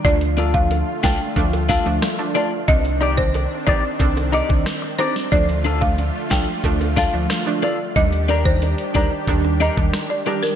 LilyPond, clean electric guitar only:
\new Staff \with { instrumentName = "Clean electric guitar" } { \time 4/4 \key d \phrygian \tempo 4 = 91 r8 <d' f' a'>8 r8 <d' f' a'>8 r8 <d' f' a'>8 r8 <d' f' a'>8 | r8 <ees' g' d''>8 r8 <ees' g' d''>8 r8 <ees' g' d''>8 r8 <ees' g' d''>8 | r8 <d' f' a'>8 r8 <d' f' a'>8 r8 <d' f' a'>8 r8 <d' f' a'>8 | r8 <d' g' bes'>8 r8 <d' g' bes'>8 r8 <d' g' bes'>8 r8 <d' g' bes'>8 | }